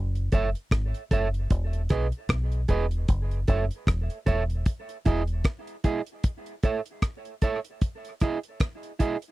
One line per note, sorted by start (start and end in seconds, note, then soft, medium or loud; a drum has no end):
0.00 0.28 F#1 medium
0.15 closed hi-hat soft
0.32 0.53 F#1 medium
0.32 0.48 A4 medium
0.32 0.49 C#5 medium
0.32 0.49 E5 loud
0.32 kick medium
0.32 closed hi-hat medium
0.55 closed hi-hat soft
0.71 0.92 G#1 medium
0.71 kick loud
0.71 cross-stick loud
0.71 closed hi-hat medium
0.94 closed hi-hat soft
1.11 1.46 F#1 medium
1.11 1.27 A4 medium
1.11 1.28 C#5 medium
1.11 1.28 E5 medium
1.11 kick medium
1.11 closed hi-hat medium
1.34 closed hi-hat soft
1.50 1.86 E1 medium
1.50 kick loud
1.50 closed hi-hat medium
1.73 closed hi-hat soft
1.89 2.11 B1 medium
1.89 2.06 G#4 medium
1.89 2.06 B4 medium
1.89 2.07 D#5 medium
1.89 kick medium
1.89 cross-stick medium
1.89 closed hi-hat medium
2.12 closed hi-hat soft
2.29 2.65 B1 medium
2.29 kick loud
2.29 cross-stick loud
2.29 closed hi-hat medium
2.52 closed hi-hat soft
2.68 3.04 E1 medium
2.68 2.85 G#4 medium
2.68 2.85 B4 medium
2.68 2.86 D#5 medium
2.68 kick medium
2.68 closed hi-hat medium
2.91 closed hi-hat soft
3.08 3.44 F#1 medium
3.08 kick loud
3.08 closed hi-hat medium
3.31 closed hi-hat soft
3.48 3.69 F#1 medium
3.48 3.64 A4 medium
3.48 3.64 C#5 medium
3.48 3.65 E5 medium
3.48 kick medium
3.48 closed hi-hat medium
3.71 closed hi-hat soft
3.87 4.07 E1 medium
3.87 kick loud
3.87 cross-stick loud
3.87 closed hi-hat medium
4.10 closed hi-hat soft
4.26 4.62 E1 medium
4.26 4.42 A4 medium
4.26 4.43 C#5 medium
4.26 4.43 E5 medium
4.26 kick medium
4.26 closed hi-hat medium
4.50 closed hi-hat soft
4.66 kick loud
4.66 closed hi-hat medium
4.89 closed hi-hat soft
5.05 5.41 E1 medium
5.05 5.21 E4 medium
5.05 5.22 G#4 medium
5.05 5.22 D#5 loud
5.05 kick medium
5.05 closed hi-hat medium
5.27 closed hi-hat soft
5.44 kick loud
5.44 cross-stick loud
5.44 closed hi-hat medium
5.67 closed hi-hat soft
5.84 6.00 E4 medium
5.84 6.00 G#4 medium
5.84 6.01 D#5 medium
5.84 kick medium
5.84 closed hi-hat medium
6.07 closed hi-hat soft
6.24 kick loud
6.24 closed hi-hat medium
6.46 closed hi-hat soft
6.63 6.79 A4 medium
6.63 6.80 C#5 medium
6.63 6.80 E5 medium
6.63 kick medium
6.63 closed hi-hat medium
6.86 closed hi-hat soft
7.02 kick loud
7.02 cross-stick loud
7.02 closed hi-hat medium
7.25 closed hi-hat soft
7.42 7.58 A4 medium
7.42 7.59 C#5 medium
7.42 7.59 E5 medium
7.42 kick medium
7.42 closed hi-hat medium
7.64 closed hi-hat soft
7.81 kick loud
7.81 closed hi-hat medium
8.05 closed hi-hat soft
8.20 8.37 E4 medium
8.20 8.38 G#4 medium
8.20 8.38 D#5 medium
8.20 kick medium
8.20 cross-stick medium
8.20 closed hi-hat medium
8.43 closed hi-hat soft
8.60 kick loud
8.60 cross-stick loud
8.60 closed hi-hat medium
8.83 closed hi-hat soft
8.99 9.16 E4 medium
8.99 9.16 G#4 medium
8.99 9.16 D#5 medium
8.99 kick medium
8.99 closed hi-hat medium
9.22 closed hi-hat soft